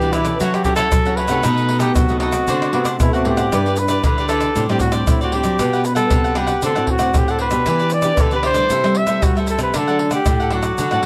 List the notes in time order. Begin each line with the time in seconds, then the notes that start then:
Already playing: B2 E3 G4
0.01 G3 D4 F#4 G4 B4 D5, pandeiro, shaker
0.12 E4 G4 B4 D5, pandeiro, tamborim, shaker
0.25 C#4 E4 G4 A4 B4 D5, pandeiro, tamborim, shaker
0.40 F#3 E4 F#4 A4 C#5 F#5, pandeiro, shaker, surdo
0.54 G4, pandeiro, tamborim, shaker
0.64 C#4 E4 G4 A4 C#5 F#5, pandeiro, shaker, surdo
0.76 E4 A4 C#5 F#5, pandeiro, tamborim, shaker
0.92 C#3 F#3, pandeiro, tamborim, shaker, surdo
1.05 C#4 E4 A4 C#5 F#5, pandeiro, shaker
1.16 E4 A4 B4 C#5, pandeiro
1.20 F#5
1.28 C3 A3 D#4 F#4 A4 C#5 F#5, pandeiro, tamborim, shaker
1.43 B2 D#4 A4 B4 D#5, pandeiro, tamborim, shaker, surdo
1.57 pandeiro, shaker
1.69 D#4 A4 B4 D#5, pandeiro
1.80 A3 D#4 F#4 G4 A4 B4 D#5, pandeiro, tamborim, shaker
1.94 C3 F#3 F#4, pandeiro, tamborim, shaker, surdo
2.08 A3 D#4 F#4 A4 B4 D#5, pandeiro, shaker
2.20 D#4 F#4 A4 B4 D#5, pandeiro, tamborim
2.32 A3 C4 F#4 A4 B4 D#5, pandeiro, tamborim, shaker
2.48 D3 D4 C5 D5 F#5, pandeiro, shaker, surdo
2.62 pandeiro, tamborim, shaker
2.72 C3 A3 B3 C4 D4 F#4 C5 D5 F#5, pandeiro
2.85 D4 C5 D5 F#5, pandeiro, tamborim, shaker
3.00 A2 B2 A3 E4, pandeiro, tamborim, shaker, surdo
3.13 A3 C4 F#4 C5 D5 F#5, pandeiro, shaker
3.25 A2 D4 G4 C5 D5 F#5, pandeiro
3.37 C5 D5 F#5, pandeiro, tamborim, shaker
3.52 G2 G3 D4 E4 G4 B4 D5, pandeiro, tamborim, shaker, surdo
3.65 D4 E4 G4 B4 D5, pandeiro, shaker
3.76 B4, muted cavaquinho stroke, pandeiro, shaker
3.88 D4 E4 G4 B4 D5, pandeiro, tamborim, shaker
4.03 D3 E4 G4 B4 D5, pandeiro, tamborim, shaker, surdo
4.18 G4 B4 D5, pandeiro, shaker
4.28 D4 E4 G4 A4 B4 D5, pandeiro, tamborim, shaker
4.40 G4 B4 D5, pandeiro, tamborim, shaker
4.55 A2 G3 C4 D4 G4 C5 D5, pandeiro, shaker, surdo
4.69 A2 G3 C4 D4 G4 C5 D5, pandeiro, tamborim, shaker
4.80 F#4, muted cavaquinho stroke, pandeiro, shaker, surdo
4.91 G3 C4 D4 G4 C5 D5, pandeiro, tamborim, shaker
5.07 A2 E4, pandeiro, tamborim, shaker, surdo
5.21 F#4 G4 C5 D5, pandeiro, shaker
5.32 G3 C4 D4 G4 C5 D5, pandeiro
5.44 F#3, pandeiro, tamborim, shaker
5.59 B2 G3 D4 F#4 G4 B4 F#5, pandeiro, tamborim, shaker, surdo
5.73 G4 B4 F#5, pandeiro, shaker
5.84 B4, muted cavaquinho stroke, pandeiro, shaker
5.95 G3 D4 F#4 G4 A4 B4 F#5, pandeiro, tamborim, shaker
6.10 C3 D4 G4 B4 F#5, pandeiro, tamborim, shaker, surdo
6.24 G4 B4 F#5, pandeiro, shaker
6.35 G3 D4 F#4 G4 B4 F#5, pandeiro, tamborim
6.47 G4 B4 F#5, pandeiro, tamborim, shaker
6.62 D3 A3 C4 D4 F#4 A4 C5 D5 F#5, pandeiro, shaker, surdo
6.75 A2 A3 C4 F#4 C5 D5 F#5, pandeiro, tamborim, shaker
6.87 F#4, muted cavaquinho stroke, pandeiro, surdo
6.99 A3 C4 F#4 C5 D5 F#5, pandeiro, tamborim, shaker
7.14 A2 A3 C4 F#4 G4, pandeiro, tamborim, shaker, surdo
7.28 A4 C5 D5 F#5, pandeiro, shaker
7.39 D4 B4 C5 D5 F#5, pandeiro
7.51 B2 B3 D4 G4, pandeiro, tamborim, shaker
7.66 E3 E4 G4 B4 D5, pandeiro, tamborim, shaker, surdo
7.79 G4 B4 D5, pandeiro, shaker
7.90 D5, muted cavaquinho stroke, pandeiro, shaker
8.02 B3 D4 G4 B4 D5, pandeiro, tamborim, shaker
8.17 B2 D3 E4 G4 A4 B4 D5, pandeiro, tamborim, shaker, surdo
8.31 B3 D4 G4 B4 D5, pandeiro, shaker
8.35 B4
8.43 E4 G4 B4 C5 D5, pandeiro, tamborim
8.54 G3 A3 E4 G4 B4 D5, pandeiro, tamborim, shaker
8.69 C3 E4 A4 C5 E5, pandeiro, shaker, surdo
8.83 G3 A4 C5 E5, pandeiro, tamborim, shaker
8.95 E5, muted cavaquinho stroke, pandeiro
9.06 G3 A3 E4 A4 C5 E5, pandeiro, tamborim, shaker
9.21 G2 G3 F#4, pandeiro, tamborim, shaker, surdo
9.35 G3 A3 E4 A4 C5 E5, pandeiro, shaker
9.47 E4 A4 C5 E5, pandeiro, shaker
9.59 C3, pandeiro, tamborim, shaker
9.63 B4
9.74 D3 F#3 A3 D4 A4 D5 F#5, pandeiro, tamborim, shaker, surdo
9.87 F#3 A3 D4 A4 D5 F#5, pandeiro, shaker
9.99 muted cavaquinho stroke, pandeiro
10.11 A3 D4 G4 A4 D5 F#5, pandeiro, tamborim, shaker
10.26 A2 D4 A4 D5 F#5, pandeiro, tamborim, shaker, surdo
10.40 A4 D5 F#5, pandeiro, shaker
10.51 F#3 A3 D4 F#4 A4 D5 F#5, pandeiro, tamborim
10.62 A4 D5 F#5, pandeiro, tamborim, shaker
10.78 D3 D4 A4 D5 F#5, pandeiro, shaker, surdo
10.91 A2 F#3 A3 D4 A4 D5 F#5, pandeiro, tamborim, shaker
11.02 C3, pandeiro